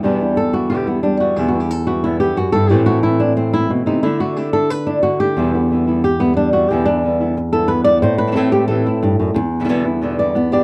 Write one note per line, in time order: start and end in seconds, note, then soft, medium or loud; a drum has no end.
0.03 1.36 E2 medium
0.03 0.20 E2 medium
0.03 0.20 B2 medium
0.03 0.20 D3 medium
0.03 1.02 G3 soft
0.03 0.20 G3 medium
0.03 0.86 B3 soft
0.03 0.20 B3 medium
0.03 0.53 D4 soft
0.03 0.19 E4 medium
0.03 0.37 E4 soft
0.20 0.36 D3 soft
0.20 0.36 G3 soft
0.20 0.36 B3 soft
0.20 0.36 E4 soft
0.37 0.54 A4 medium
0.37 muted nylon-string guitar stroke medium
0.53 0.70 D3 soft
0.53 0.70 G3 soft
0.53 0.70 B3 soft
0.53 0.69 E4 soft
0.53 0.70 F#4 medium
0.70 0.86 E2 medium
0.70 0.86 B2 medium
0.70 0.87 D3 medium
0.70 0.87 G3 medium
0.70 0.86 B3 medium
0.70 0.85 E4 medium
0.70 0.87 G4 medium
0.86 1.03 D3 soft
0.86 1.03 G3 soft
0.86 1.03 B3 soft
0.86 1.03 E4 soft
1.03 1.35 G3 medium
1.03 1.20 D4 medium
1.03 muted nylon-string guitar stroke soft
1.20 1.36 D3 soft
1.20 1.37 G3 soft
1.20 1.36 B3 soft
1.20 1.36 E4 soft
1.20 1.37 F#4 medium
1.36 1.53 E2 medium
1.36 2.36 E2 medium
1.36 1.53 B2 medium
1.36 1.53 D3 medium
1.36 1.53 G3 medium
1.36 1.53 B3 medium
1.36 1.52 E4 medium
1.36 1.48 G4 medium
1.48 1.59 F#4 medium
1.53 1.70 D3 soft
1.53 1.70 G3 soft
1.53 1.70 B3 soft
1.53 1.69 E4 soft
1.60 1.71 G4 medium
1.70 1.87 A4 medium
1.70 muted nylon-string guitar stroke medium
1.87 2.03 D3 soft
1.87 2.04 G3 soft
1.87 2.03 B3 soft
1.87 2.03 E4 soft
1.87 2.04 F#4 medium
2.04 2.20 E2 medium
2.04 2.20 B2 medium
2.04 2.20 D3 medium
2.04 2.20 G3 medium
2.04 2.20 B3 medium
2.04 2.20 E4 medium
2.04 2.19 E4 medium
2.20 2.37 D3 soft
2.20 2.37 G3 soft
2.20 2.37 B3 soft
2.20 2.36 E4 soft
2.20 2.37 G4 medium
2.37 2.53 F#2 medium
2.37 2.54 F#4 medium
2.37 muted nylon-string guitar stroke medium
2.52 2.70 G2 medium
2.52 2.70 D3 soft
2.52 2.70 G3 soft
2.52 2.70 B3 soft
2.52 2.70 E4 soft
2.52 2.70 A4 loud
2.70 2.86 A2 medium
2.70 3.70 A2 medium
2.70 2.86 E3 medium
2.70 4.06 E3 soft
2.70 2.87 A3 medium
2.70 4.03 A3 soft
2.70 2.87 C4 medium
2.70 3.19 C4 soft
2.70 2.86 E4 medium
2.70 2.86 G4 medium
2.86 3.03 A3 soft
2.86 3.03 C4 soft
2.86 3.03 E4 soft
2.86 3.03 F#4 medium
3.03 3.19 E3 soft
3.03 3.20 A3 soft
3.03 3.20 C4 soft
3.03 3.20 E4 medium
3.03 3.19 E4 medium
3.20 3.36 A3 soft
3.20 3.36 C4 soft
3.20 3.36 D4 medium
3.20 3.36 E4 soft
3.36 3.54 C4 medium
3.36 muted nylon-string guitar stroke soft
3.53 3.87 A3 soft
3.53 3.86 C4 soft
3.53 3.85 E4 soft
3.53 3.70 E4 medium
3.70 3.86 B2 medium
3.86 4.03 C3 medium
3.86 4.02 A3 soft
3.86 4.03 C4 soft
3.86 4.03 D#4 medium
3.86 4.03 E4 soft
4.03 4.19 D3 medium
4.03 5.03 D3 medium
4.03 4.20 A3 medium
4.03 4.20 D4 medium
4.03 4.20 E4 medium
4.03 4.19 E4 medium
4.20 4.36 A3 soft
4.20 4.37 D4 soft
4.20 4.36 E4 soft
4.20 4.37 F#4 medium
4.36 4.53 D3 soft
4.36 4.53 A3 soft
4.36 4.53 D4 medium
4.36 4.53 E4 medium
4.36 4.53 G4 medium
4.53 4.70 A3 soft
4.53 4.70 D4 soft
4.53 4.70 E4 soft
4.53 4.70 A4 loud
4.70 4.87 B4 loud
4.70 muted nylon-string guitar stroke soft
4.87 5.21 A3 soft
4.87 5.02 D4 medium
4.87 5.20 D4 soft
4.87 5.19 E4 soft
5.03 5.35 D3 medium
5.03 5.20 F#4 medium
5.20 5.37 A3 soft
5.20 5.37 D4 soft
5.20 5.36 E4 soft
5.20 5.70 G4 medium
5.37 5.53 E2 medium
5.37 6.69 E2 medium
5.37 5.53 B2 medium
5.37 5.53 D3 medium
5.37 5.53 G3 medium
5.37 5.53 B3 medium
5.37 5.52 E4 medium
5.53 5.69 D3 soft
5.53 5.70 G3 soft
5.53 5.70 B3 soft
5.53 5.69 E4 soft
5.70 5.86 D3 soft
5.70 5.87 G3 soft
5.70 5.87 B3 soft
5.70 5.86 E4 soft
5.87 6.03 D3 soft
5.87 6.03 G3 soft
5.87 6.04 B3 soft
5.87 6.03 E4 soft
6.04 6.21 G4 medium
6.04 muted nylon-string guitar stroke soft
6.20 6.54 D3 soft
6.20 6.54 G3 soft
6.20 6.36 B3 medium
6.20 6.53 B3 soft
6.20 6.53 E4 soft
6.36 6.68 G3 medium
6.36 6.53 D4 medium
6.53 6.70 D3 soft
6.53 6.70 G3 soft
6.53 6.70 B3 soft
6.53 6.70 E4 soft
6.53 6.69 F#4 medium
6.69 6.86 E2 medium
6.69 8.03 E2 medium
6.69 6.86 B2 medium
6.69 6.87 D3 medium
6.69 6.87 G3 medium
6.69 6.86 B3 medium
6.69 6.86 E4 medium
6.69 6.86 G4 loud
6.85 7.02 D3 soft
6.85 7.03 G3 soft
6.85 7.03 B3 soft
6.85 7.03 D4 loud
6.85 7.03 E4 soft
7.03 7.19 D3 soft
7.03 7.20 G3 soft
7.03 7.20 B3 soft
7.03 7.19 E4 medium
7.20 7.36 D3 soft
7.20 7.37 G3 soft
7.20 7.36 B3 soft
7.20 7.36 E4 soft
7.37 muted nylon-string guitar stroke medium
7.53 7.87 D3 soft
7.53 7.87 G3 soft
7.53 7.86 B3 soft
7.53 7.85 E4 soft
7.53 7.70 A4 medium
7.68 8.01 B3 medium
7.68 7.84 B4 medium
7.84 8.03 D3 soft
7.84 8.03 G3 soft
7.84 8.03 B3 soft
7.84 8.02 E4 soft
7.84 8.02 D5 loud
8.02 9.35 A2 medium
8.02 8.18 C5 medium
8.02 muted nylon-string guitar stroke medium
8.18 8.36 B4 medium
8.27 8.30 E3 soft
8.27 8.31 A3 soft
8.27 8.31 C4 soft
8.27 8.32 E4 soft
8.32 8.35 E3 medium
8.32 8.36 A3 medium
8.32 8.36 C4 medium
8.32 8.36 E4 medium
8.32 8.52 A4 medium
8.36 8.52 A2 medium
8.36 8.52 E3 medium
8.36 8.53 A3 medium
8.36 8.53 C4 medium
8.36 8.51 E4 medium
8.52 8.69 A3 soft
8.52 8.69 C4 soft
8.52 8.69 E4 soft
8.52 8.67 G4 medium
8.68 8.85 A2 medium
8.68 8.86 E3 medium
8.68 8.86 A3 medium
8.68 8.86 C4 medium
8.68 8.84 E4 medium
8.68 9.02 A4 medium
8.85 9.02 A3 soft
8.85 9.02 C4 soft
8.85 9.02 E4 soft
8.85 10.22 E4 medium
9.03 9.19 G2 medium
9.03 muted nylon-string guitar stroke medium
9.20 9.34 F#2 medium
9.34 10.64 E2 medium
9.34 muted nylon-string guitar stroke medium
9.60 9.63 B2 soft
9.60 9.63 D3 soft
9.60 9.64 G3 medium
9.60 9.64 B3 medium
9.60 9.64 E4 soft
9.64 9.68 B2 medium
9.64 9.68 D3 medium
9.64 9.68 G3 medium
9.64 9.69 B3 medium
9.64 9.69 E4 medium
9.69 9.85 E2 medium
9.69 9.85 B2 medium
9.69 9.85 D3 medium
9.69 9.85 G3 medium
9.69 9.84 B3 medium
9.69 9.83 E4 medium
9.85 10.01 D3 soft
9.85 10.02 G3 soft
9.85 10.02 B3 soft
9.85 10.01 E4 medium
10.01 10.18 E2 medium
10.01 10.18 B2 medium
10.01 10.18 D3 medium
10.01 10.19 G3 medium
10.01 10.18 B3 medium
10.01 10.18 E4 medium
10.19 10.35 D3 soft
10.19 10.35 G3 soft
10.19 10.35 B3 soft
10.19 10.35 E4 soft
10.19 10.52 D5 medium
10.35 10.64 B3 medium
10.35 muted nylon-string guitar stroke medium
10.52 10.64 D4 medium
10.52 10.64 G4 medium
10.52 10.64 D5 medium